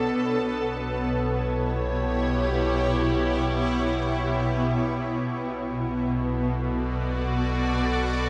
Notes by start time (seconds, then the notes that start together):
Already playing: B1 B2 B3 D4 A4 C#5
0.17 B1 B2
0.60 C#5
0.79 E4
1.04 G4
5.25 B1
5.70 F#4
5.74 A4
6.08 D5